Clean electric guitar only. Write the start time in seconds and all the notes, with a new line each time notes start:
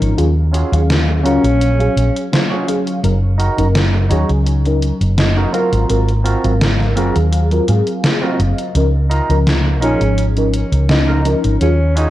0.01 muted clean electric guitar stroke
0.52 C#4 F4 F#4 G#4
1.07 muted clean electric guitar stroke
1.23 C#4 F4 F#4 A#4
1.59 muted clean electric guitar stroke
2.50 C#4 F4 F#4 G#4
2.86 muted clean electric guitar stroke
3.38 D#4 F#4 A#4
3.93 muted clean electric guitar stroke
4.09 D#4 F#4 C#5
4.45 muted clean electric guitar stroke
5.36 D#4 F#4 A#4
5.53 C4 F4 F#4 A#4
6.24 C4 F4 F#4 A#4
6.79 muted clean electric guitar stroke
6.96 C4 F4 F#4 A#4
7.31 muted clean electric guitar stroke
8.21 C4 F4 F#4 A#4
8.57 muted clean electric guitar stroke
9.10 D#4 F4 A#4
9.65 muted clean electric guitar stroke
9.81 D#4 F4 A#4
10.17 muted clean electric guitar stroke
11.07 D#4 F4 A#4
11.43 muted clean electric guitar stroke
11.95 C#4 F4 F#4 G#4